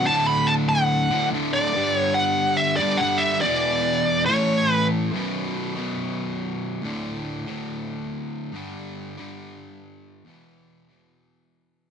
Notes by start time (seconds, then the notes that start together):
0.06 D2 A2 A5
0.10 D3
0.27 B5
0.47 A5
0.69 F#5
1.10 D2 A2 D3
1.32 D2 A2 D3
1.53 D5
1.74 G2 D3 G3
1.95 C#5
2.14 F#5
2.57 E5
2.76 G3 D5
2.81 G2 D3
2.98 G2 F#5
3.02 D3 G3
3.18 E5
3.41 E2 B2 D5
3.46 E3
4.26 A2 E3 C#5
4.32 A3
4.72 B4
5.12 B1 F#2
5.16 B2
5.76 B1 F#2 B2
6.82 D2 A2 D3
7.47 D2 A2 D3
8.52 G2 D3 G3
9.18 D3 G3
9.22 G2
10.25 E2 B2
10.29 E3
10.89 E2 B2 E3